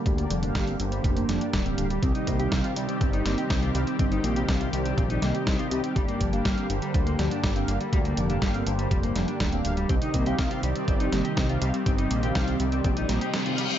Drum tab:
HH |xxxxxxxxxxxxxxxx|xxxxxxxxxxxxxxxx|xxxxxxxxxxxxxxxx|xxxxxxxxxxxxxxxx|
SD |----o-----o-o---|----o-----o-o---|----o-----o-o---|----o-----o-o---|
BD |o---o---o---o---|o-o-o---o---o---|o---o---o---o---|o-o-o---o---o---|

HH |xxxxxxxxxxxxxxxx|xxxxxxxxxxxxxxxx|xxxxxxxxxxxxxxxx|
SD |----o-----o-o---|----o-----o-o---|----o-----o-o---|
BD |o---o---o---o---|o-o-o---o---o---|o---o---o-------|